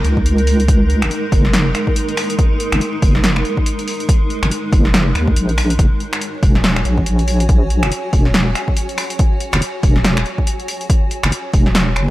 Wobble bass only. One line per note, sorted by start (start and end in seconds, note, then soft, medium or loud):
0.04 1.03 C#2 loud
1.02 1.10 G#1 loud
1.32 1.74 F#1 loud
2.72 2.80 G#1 loud
3.02 3.44 F#1 loud
4.43 4.51 G#1 loud
4.72 5.14 F#1 loud
5.15 5.35 D#2 medium
5.36 5.78 A#1 loud
5.79 5.90 F#1 loud
6.43 6.84 E1 loud
6.85 7.84 A#1 loud
7.83 7.91 F#1 loud
8.13 8.54 E1 loud
9.53 9.61 F#1 medium
9.83 10.25 E1 loud
11.23 11.32 F#1 medium
11.54 11.98 E1 loud
11.96 12.10 F#1 medium